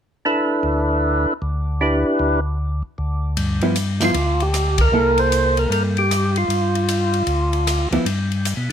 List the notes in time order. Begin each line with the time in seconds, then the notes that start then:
0.25 D4 E4 A4 B4
0.63 D2
1.42 D2
1.81 D4 E4 G4 B4
2.19 D2
2.98 D2
3.37 G2, ride
3.61 F3 B3 E4, ride
3.76 hi-hat pedal, ride
4.00 F3 B3 E4, snare, ride
4.05 F4
4.14 D2, ride
4.40 G4, ride
4.54 cross-stick, hi-hat pedal, ride
4.78 A#4, kick, ride
4.92 C2 A#3 E4 A4
5.18 C5, ride
5.32 hi-hat pedal, ride
5.57 A#4, ride
5.69 G2 A#4, ride
5.97 G4, ride
6.11 cross-stick, hi-hat pedal, ride
6.36 F4, ride
6.48 G2, ride
6.75 ride
6.89 hi-hat pedal, ride
7.14 ride
7.27 D2, ride
7.53 ride
7.67 cross-stick, hi-hat pedal, ride
7.91 D2 F3 B3 E4, ride
8.05 G2, ride
8.32 ride
8.45 hi-hat pedal, ride
8.57 B2